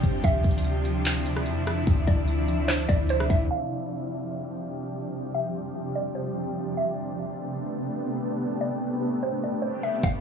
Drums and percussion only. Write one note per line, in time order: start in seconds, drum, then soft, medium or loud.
0.04 kick medium
0.04 closed hi-hat medium
0.24 kick loud
0.24 closed hi-hat medium
0.44 kick medium
0.44 closed hi-hat soft
0.51 closed hi-hat medium
0.58 closed hi-hat medium
0.65 closed hi-hat medium
0.85 closed hi-hat medium
1.05 clap loud
1.05 closed hi-hat medium
1.26 closed hi-hat medium
1.36 cross-stick medium
1.46 closed hi-hat medium
1.67 cross-stick loud
1.67 closed hi-hat medium
1.87 kick loud
1.87 closed hi-hat medium
2.08 kick medium
2.08 closed hi-hat medium
2.28 closed hi-hat medium
2.48 closed hi-hat medium
2.68 clap loud
2.68 closed hi-hat medium
2.89 kick medium
2.89 closed hi-hat medium
3.09 closed hi-hat medium
3.20 cross-stick loud
3.30 kick medium
3.30 closed hi-hat medium
10.03 kick loud
10.03 closed hi-hat medium